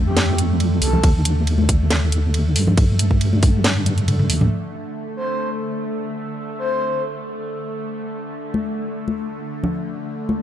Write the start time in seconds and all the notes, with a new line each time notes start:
Already playing: F2 D3 A3
0.06 G4
0.17 snare, ride
0.38 closed hi-hat
0.60 ride
0.82 C2 A4, open hi-hat
0.93 low conga
1.03 D#2, kick, ride
1.25 closed hi-hat
1.47 ride
1.58 high conga
1.69 kick, closed hi-hat
1.91 snare, ride
2.12 closed hi-hat
2.34 ride
2.56 G2, open hi-hat
2.67 low conga
2.78 kick, ride
2.99 closed hi-hat
3.11 kick
3.21 ride
3.33 high conga
3.43 kick, open hi-hat
3.64 snare, ride
3.86 closed hi-hat, high tom
3.98 closed hi-hat
4.08 mid tom, ride
4.19 mid tom
4.30 D#2, open hi-hat
4.41 mid tom, low conga
4.52 D3 A3
5.16 C5
6.59 C5
8.54 high conga
9.08 high conga
9.64 low conga
10.29 high conga